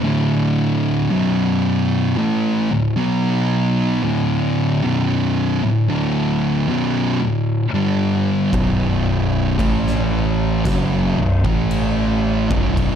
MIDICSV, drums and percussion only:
0, 0, Header, 1, 2, 480
1, 0, Start_track
1, 0, Tempo, 1060071
1, 26, Time_signature, 4, 2, 24, 8
1, 5866, End_track
2, 0, Start_track
2, 0, Title_t, "Drums"
2, 3863, Note_on_c, 9, 36, 91
2, 3865, Note_on_c, 9, 49, 48
2, 3908, Note_off_c, 9, 36, 0
2, 3910, Note_off_c, 9, 49, 0
2, 4343, Note_on_c, 9, 36, 105
2, 4346, Note_on_c, 9, 49, 51
2, 4389, Note_off_c, 9, 36, 0
2, 4392, Note_off_c, 9, 49, 0
2, 4469, Note_on_c, 9, 38, 31
2, 4514, Note_off_c, 9, 38, 0
2, 4824, Note_on_c, 9, 36, 113
2, 4824, Note_on_c, 9, 49, 63
2, 4831, Note_on_c, 9, 38, 109
2, 4869, Note_off_c, 9, 36, 0
2, 4869, Note_off_c, 9, 49, 0
2, 4876, Note_off_c, 9, 38, 0
2, 5183, Note_on_c, 9, 36, 96
2, 5228, Note_off_c, 9, 36, 0
2, 5301, Note_on_c, 9, 49, 55
2, 5347, Note_off_c, 9, 49, 0
2, 5663, Note_on_c, 9, 36, 118
2, 5708, Note_off_c, 9, 36, 0
2, 5783, Note_on_c, 9, 36, 86
2, 5784, Note_on_c, 9, 49, 54
2, 5828, Note_off_c, 9, 36, 0
2, 5830, Note_off_c, 9, 49, 0
2, 5866, End_track
0, 0, End_of_file